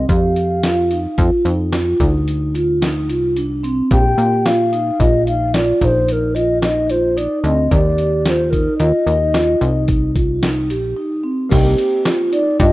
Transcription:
0.09 F2 G4 F5, kick, closed hi-hat
0.36 closed hi-hat
0.63 F4, snare, closed hi-hat
0.91 D#4, closed hi-hat
1.18 F2 F4, kick, closed hi-hat
1.45 F2 D#4, closed hi-hat
1.72 F4, snare, closed hi-hat
2.00 D2 D#4, kick, closed hi-hat
2.28 closed hi-hat
2.55 F4, closed hi-hat
2.82 D#4, snare, closed hi-hat
3.08 C2 F4, closed hi-hat
3.36 D4, closed hi-hat
3.63 C4, closed hi-hat
3.91 A#1 G4 G5, kick, closed hi-hat
4.18 A#2, closed hi-hat
4.46 F4 F5, snare, closed hi-hat
4.73 D#4, closed hi-hat
5.00 A#1 F4 D#5, kick, closed hi-hat
5.27 D#4 F5, closed hi-hat
5.54 F4 D5, snare, closed hi-hat
5.81 A#1 D#4 C5 D5, kick, closed hi-hat
6.08 C5, closed hi-hat
6.12 A#4
6.35 F4 D#5, closed hi-hat
6.62 D#4 D#5, snare, closed hi-hat
6.90 F4 C5, closed hi-hat
7.17 D#4 D5, closed hi-hat
7.44 D2 C4 D#5, closed hi-hat
7.71 D#2 G4 D5, kick, closed hi-hat
7.98 closed hi-hat
8.25 F4 D5, snare, closed hi-hat
8.30 C5
8.45 C5
8.50 D#4 A#4, kick, closed hi-hat
8.78 D#2 F4 D#5, closed hi-hat
9.06 D#2 D#4, closed hi-hat
9.34 F4, snare, closed hi-hat
9.61 C2 D#4, closed hi-hat
9.88 kick, closed hi-hat
10.15 F4, kick, closed hi-hat
10.43 D#4, snare, closed hi-hat
10.70 A#1 G4, closed hi-hat
10.97 D#4
11.23 C4
11.49 C2 A#3 C4 D#4 G4, kick, closed hi-hat, crash
11.78 closed hi-hat
12.05 F4, snare, closed hi-hat
12.32 D#4 D5, closed hi-hat
12.59 G2 F4 D#5, kick, closed hi-hat

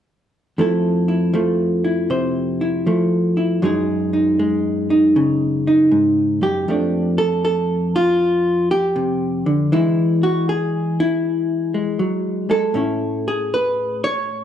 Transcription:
0.58 F2 F3 A3 E4 A4
1.08 E4
1.34 F3 A3
1.84 E4
2.10 C3 C5
2.61 E4
2.87 F3 A3
3.37 E4
3.62 F#2 F#3 G#3 D#4 G#4
4.13 D#4
4.39 G#3
4.90 D#4
5.16 C#3
5.67 D#4
5.92 G#2
6.42 F#2 G4
6.68 F2 F3 A3 D4
7.18 A4
7.45 A4
7.96 F4
8.71 G4
8.96 C3
9.46 D3
9.72 E3 G#3 E4
10.23 F#4
10.49 G#4
11.00 E4
11.74 G#3
11.99 F#3
12.50 G#3 A4
12.74 A2 A3 C#4 E4
13.28 G#4
13.54 B4
14.04 C#5

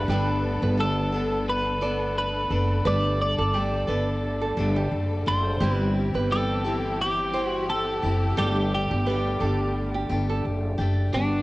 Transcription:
Already playing: D3 A3 D4 A4 B4
0.08 G1 G3 B3 D4 G4 A4
0.62 G1 B4
0.77 G3 B3 D4 A4
1.12 B3 D4 A4
1.50 B4
1.81 B3 D4 A4 D5
2.18 B4
2.50 F#1 B3 D4 A4
2.85 G1 D3 G3 A3 D4 A4 B4 D5
3.22 D5
3.38 G1 A4
3.53 G3 A3 D4 G4 A4
3.87 G1 A3 D4 A4 B4
4.41 A4
4.57 G1 A3 D4 A4
4.76 G4
4.92 F#1
5.26 F#1 A3 D4 A4 C5
5.60 G1 E3 G3 C4 E4 G4
5.73 B4
6.14 G1 B4
6.30 G3 C4 E4 G4 A4
6.64 C4 E4 G4
7.01 G4
7.34 C4 E4 G4 C5
7.46 F#4
7.70 A4
8.02 F#1 C4 E4 G4
8.37 G1 D3 G3 A3 D4 G4 A4
8.74 G4
8.91 G1 G4
9.06 G3 A3 D4 G4 B4
9.40 G1 A3 D4 G4 A4
9.94 G4
10.09 G1 D4 G4
10.13 A3
10.29 A4
10.45 F#1
10.78 F#1 A3 D4 G4
11.13 G1 G3 B3 D4 F#4 G4

